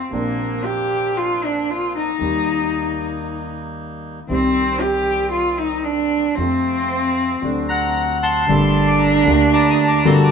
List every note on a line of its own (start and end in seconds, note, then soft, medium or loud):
0.09 2.11 A#1 medium
0.09 2.11 A#2 medium
0.09 2.10 C3 soft
0.09 2.11 F3 soft
0.09 2.11 A#3 medium
0.09 0.66 A#3 medium
0.09 2.11 A#3 soft
0.09 2.11 C4 medium
0.09 2.11 D4 medium
0.13 2.12 D4 medium
0.64 1.19 G4 medium
1.17 1.46 F4 medium
1.45 1.72 D4 medium
1.71 1.95 F4 medium
1.96 3.48 D#4 medium
2.18 4.19 D#2 medium
2.18 4.19 D#3 medium
2.18 4.19 G3 soft
2.18 4.20 G3 medium
2.18 4.19 A#3 soft
2.18 4.20 A#3 medium
2.18 4.20 D#4 medium
2.22 4.20 G4 medium
4.27 6.27 C2 medium
4.27 6.28 C2 medium
4.27 6.27 C3 medium
4.27 6.26 D#3 soft
4.27 6.28 D#3 medium
4.27 6.27 G3 soft
4.27 6.28 G3 medium
4.27 6.27 C4 soft
4.27 6.28 C4 medium
4.27 4.82 C4 medium
4.27 6.28 G4 medium
4.81 5.32 G4 medium
5.32 5.61 F4 medium
5.59 5.86 D#4 medium
5.84 6.36 D4 medium
6.35 7.37 F2 medium
6.35 7.36 C3 soft
6.35 7.37 F3 medium
6.35 7.37 A3 medium
6.35 7.38 A3 soft
6.35 7.94 C4 medium
6.35 7.38 C4 medium
6.35 7.38 F4 medium
6.40 7.38 F4 medium
7.41 8.44 D2 medium
7.41 8.43 C3 soft
7.41 8.43 D3 medium
7.41 8.43 F#3 soft
7.41 8.44 A3 soft
7.41 8.43 C4 soft
7.41 8.43 D4 soft
7.41 8.44 D4 soft
7.41 8.44 F#4 medium
7.69 8.45 F#5 medium
7.69 8.18 A#5 medium
8.23 9.24 A5 medium
8.23 8.90 C6 medium
8.47 9.23 G1 medium
8.47 9.24 G1 medium
8.47 9.24 G2 medium
8.47 9.22 D3 medium
8.47 9.23 A3 medium
8.47 9.24 A#3 medium
8.47 10.07 D4 loud
8.47 9.24 G4 medium
8.47 9.24 A4 medium
8.87 9.00 D6 medium
8.99 9.16 A#5 medium
9.17 9.35 A#5 medium
9.24 10.01 D2 medium
9.24 10.02 D2 loud
9.24 10.01 D3 medium
9.24 10.00 A3 medium
9.24 10.01 A#3 medium
9.24 10.02 G4 medium
9.28 10.02 A3 medium
9.28 10.02 G4 medium
9.36 9.44 A#5 medium
9.53 10.31 A5 medium
9.53 10.31 A#5 medium
9.53 9.69 D6 medium
9.70 9.78 D#6 medium
9.88 10.04 D6 medium
10.04 10.27 G1 medium
10.04 10.28 G1 medium
10.04 10.27 G2 medium
10.04 10.27 D3 medium
10.04 10.27 A3 medium
10.04 10.27 A#3 medium
10.04 10.28 A#3 medium
10.04 10.31 F#4 loud
10.04 10.27 G4 medium
10.04 10.28 G4 medium
10.04 10.28 A4 medium
10.04 10.14 C6 medium
10.24 10.31 D6 medium